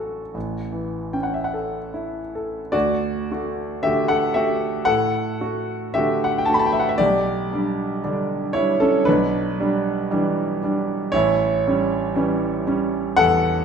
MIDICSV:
0, 0, Header, 1, 2, 480
1, 0, Start_track
1, 0, Key_signature, 2, "major"
1, 0, Tempo, 1192843
1, 1102, Tempo, 1107011
1, 1103, Time_signature, 4, 2, 24, 8
1, 1582, Tempo, 1056338
1, 2542, Tempo, 1032702
1, 6115, End_track
2, 0, Start_track
2, 0, Title_t, "Grand piano"
2, 0, Program_c, 0, 0
2, 0, Control_c, 0, 64, 127
2, 0, Note_on_c, 0, 33, 47
2, 0, Note_on_c, 0, 54, 35
2, 0, Note_on_c, 0, 62, 37
2, 0, Note_on_c, 0, 66, 36
2, 0, Note_on_c, 0, 69, 36
2, 0, Note_on_c, 0, 78, 52
2, 82, Note_off_c, 0, 66, 0
2, 125, Note_off_c, 0, 33, 0
2, 138, Note_on_c, 0, 33, 46
2, 143, Note_off_c, 0, 69, 0
2, 148, Control_c, 0, 64, 0
2, 150, Note_off_c, 0, 54, 0
2, 151, Note_off_c, 0, 62, 0
2, 223, Control_c, 0, 64, 127
2, 291, Note_on_c, 0, 52, 36
2, 455, Note_on_c, 0, 61, 36
2, 456, Note_on_c, 0, 79, 45
2, 459, Note_off_c, 0, 78, 0
2, 495, Note_on_c, 0, 78, 42
2, 498, Note_off_c, 0, 79, 0
2, 538, Note_off_c, 0, 78, 0
2, 539, Note_on_c, 0, 76, 43
2, 551, Note_off_c, 0, 52, 0
2, 579, Note_off_c, 0, 76, 0
2, 581, Note_on_c, 0, 78, 45
2, 618, Note_on_c, 0, 69, 40
2, 620, Note_off_c, 0, 78, 0
2, 714, Note_off_c, 0, 61, 0
2, 780, Note_on_c, 0, 64, 38
2, 881, Note_off_c, 0, 69, 0
2, 947, Note_on_c, 0, 69, 38
2, 1040, Note_off_c, 0, 64, 0
2, 1085, Note_off_c, 0, 33, 0
2, 1094, Note_on_c, 0, 74, 84
2, 1098, Note_on_c, 0, 66, 67
2, 1103, Note_off_c, 0, 69, 0
2, 1103, Note_on_c, 0, 38, 58
2, 1110, Control_c, 0, 64, 0
2, 1176, Control_c, 0, 64, 127
2, 1339, Note_off_c, 0, 38, 0
2, 1346, Note_off_c, 0, 66, 0
2, 1351, Note_on_c, 0, 57, 43
2, 1352, Note_on_c, 0, 66, 47
2, 1568, Note_off_c, 0, 57, 0
2, 1569, Note_off_c, 0, 66, 0
2, 1574, Note_on_c, 0, 76, 88
2, 1577, Note_on_c, 0, 67, 62
2, 1578, Note_off_c, 0, 74, 0
2, 1585, Note_on_c, 0, 50, 44
2, 1590, Note_on_c, 0, 57, 45
2, 1591, Note_on_c, 0, 66, 48
2, 1690, Note_on_c, 0, 78, 81
2, 1692, Note_off_c, 0, 67, 0
2, 1696, Note_on_c, 0, 69, 62
2, 1699, Note_off_c, 0, 76, 0
2, 1805, Note_off_c, 0, 50, 0
2, 1807, Note_off_c, 0, 57, 0
2, 1807, Note_on_c, 0, 76, 80
2, 1808, Note_off_c, 0, 66, 0
2, 1810, Note_off_c, 0, 69, 0
2, 1815, Note_off_c, 0, 78, 0
2, 1815, Note_on_c, 0, 67, 60
2, 1816, Note_on_c, 0, 57, 43
2, 1818, Note_on_c, 0, 66, 47
2, 2037, Note_off_c, 0, 57, 0
2, 2038, Note_off_c, 0, 66, 0
2, 2038, Note_off_c, 0, 67, 0
2, 2039, Note_on_c, 0, 78, 96
2, 2044, Note_on_c, 0, 69, 69
2, 2051, Note_off_c, 0, 76, 0
2, 2051, Note_on_c, 0, 45, 54
2, 2064, Control_c, 0, 64, 0
2, 2138, Control_c, 0, 64, 127
2, 2288, Note_off_c, 0, 45, 0
2, 2293, Note_on_c, 0, 57, 45
2, 2293, Note_on_c, 0, 66, 49
2, 2517, Note_off_c, 0, 69, 0
2, 2521, Note_off_c, 0, 57, 0
2, 2521, Note_off_c, 0, 66, 0
2, 2532, Note_off_c, 0, 78, 0
2, 2533, Note_on_c, 0, 76, 86
2, 2537, Note_on_c, 0, 67, 61
2, 2543, Note_on_c, 0, 50, 49
2, 2544, Note_on_c, 0, 57, 47
2, 2552, Note_on_c, 0, 66, 50
2, 2673, Note_on_c, 0, 78, 70
2, 2676, Note_off_c, 0, 67, 0
2, 2684, Note_off_c, 0, 76, 0
2, 2737, Note_off_c, 0, 78, 0
2, 2740, Note_on_c, 0, 79, 66
2, 2767, Note_off_c, 0, 50, 0
2, 2767, Note_off_c, 0, 57, 0
2, 2771, Note_off_c, 0, 66, 0
2, 2773, Note_on_c, 0, 81, 69
2, 2785, Note_off_c, 0, 79, 0
2, 2791, Note_on_c, 0, 57, 47
2, 2792, Note_on_c, 0, 66, 50
2, 2813, Note_on_c, 0, 83, 72
2, 2815, Note_off_c, 0, 81, 0
2, 2837, Note_on_c, 0, 81, 72
2, 2847, Note_off_c, 0, 83, 0
2, 2869, Note_on_c, 0, 79, 65
2, 2873, Note_off_c, 0, 81, 0
2, 2898, Note_on_c, 0, 76, 70
2, 2905, Note_off_c, 0, 79, 0
2, 2930, Note_on_c, 0, 78, 65
2, 2938, Note_off_c, 0, 76, 0
2, 2975, Note_off_c, 0, 78, 0
2, 2975, Note_on_c, 0, 76, 67
2, 3007, Note_off_c, 0, 57, 0
2, 3007, Note_off_c, 0, 66, 0
2, 3016, Note_on_c, 0, 74, 96
2, 3019, Note_off_c, 0, 76, 0
2, 3023, Note_on_c, 0, 67, 71
2, 3029, Control_c, 0, 64, 0
2, 3030, Note_on_c, 0, 35, 63
2, 3090, Control_c, 0, 64, 127
2, 3259, Note_off_c, 0, 35, 0
2, 3271, Note_on_c, 0, 55, 48
2, 3274, Note_on_c, 0, 62, 53
2, 3492, Note_off_c, 0, 55, 0
2, 3493, Note_off_c, 0, 62, 0
2, 3508, Note_on_c, 0, 55, 46
2, 3510, Note_on_c, 0, 50, 49
2, 3511, Note_on_c, 0, 62, 56
2, 3728, Note_off_c, 0, 67, 0
2, 3729, Note_off_c, 0, 55, 0
2, 3730, Note_off_c, 0, 50, 0
2, 3730, Note_off_c, 0, 62, 0
2, 3738, Note_on_c, 0, 73, 84
2, 3743, Note_off_c, 0, 74, 0
2, 3743, Note_on_c, 0, 64, 64
2, 3747, Note_on_c, 0, 55, 46
2, 3753, Note_on_c, 0, 62, 52
2, 3855, Note_off_c, 0, 64, 0
2, 3861, Note_off_c, 0, 73, 0
2, 3864, Note_on_c, 0, 69, 80
2, 3868, Note_on_c, 0, 61, 60
2, 3967, Note_off_c, 0, 55, 0
2, 3971, Note_off_c, 0, 62, 0
2, 3979, Note_off_c, 0, 61, 0
2, 3980, Note_on_c, 0, 71, 87
2, 3984, Note_on_c, 0, 62, 66
2, 3985, Note_off_c, 0, 69, 0
2, 3994, Control_c, 0, 64, 0
2, 3995, Note_on_c, 0, 35, 68
2, 4054, Control_c, 0, 64, 127
2, 4224, Note_off_c, 0, 35, 0
2, 4229, Note_off_c, 0, 62, 0
2, 4234, Note_on_c, 0, 55, 54
2, 4235, Note_on_c, 0, 62, 53
2, 4452, Note_off_c, 0, 55, 0
2, 4453, Note_off_c, 0, 62, 0
2, 4470, Note_on_c, 0, 52, 52
2, 4472, Note_on_c, 0, 55, 53
2, 4474, Note_on_c, 0, 62, 56
2, 4692, Note_off_c, 0, 52, 0
2, 4692, Note_off_c, 0, 55, 0
2, 4693, Note_off_c, 0, 62, 0
2, 4706, Note_off_c, 0, 71, 0
2, 4715, Note_on_c, 0, 55, 48
2, 4719, Note_on_c, 0, 62, 56
2, 4935, Note_off_c, 0, 55, 0
2, 4937, Note_off_c, 0, 62, 0
2, 4940, Note_on_c, 0, 73, 101
2, 4947, Note_on_c, 0, 64, 77
2, 4950, Note_on_c, 0, 33, 72
2, 4959, Control_c, 0, 64, 0
2, 5029, Control_c, 0, 64, 127
2, 5181, Note_off_c, 0, 33, 0
2, 5198, Note_on_c, 0, 55, 51
2, 5199, Note_on_c, 0, 61, 57
2, 5410, Note_off_c, 0, 55, 0
2, 5410, Note_off_c, 0, 61, 0
2, 5421, Note_on_c, 0, 52, 54
2, 5422, Note_on_c, 0, 55, 55
2, 5425, Note_on_c, 0, 61, 59
2, 5641, Note_off_c, 0, 52, 0
2, 5641, Note_off_c, 0, 55, 0
2, 5643, Note_off_c, 0, 61, 0
2, 5661, Note_on_c, 0, 55, 52
2, 5662, Note_on_c, 0, 61, 57
2, 5880, Note_off_c, 0, 64, 0
2, 5882, Note_off_c, 0, 55, 0
2, 5883, Note_off_c, 0, 61, 0
2, 5892, Note_on_c, 0, 78, 115
2, 5895, Note_off_c, 0, 73, 0
2, 5896, Note_on_c, 0, 69, 85
2, 5905, Note_on_c, 0, 40, 68
2, 6115, Note_off_c, 0, 40, 0
2, 6115, Note_off_c, 0, 69, 0
2, 6115, Note_off_c, 0, 78, 0
2, 6115, End_track
0, 0, End_of_file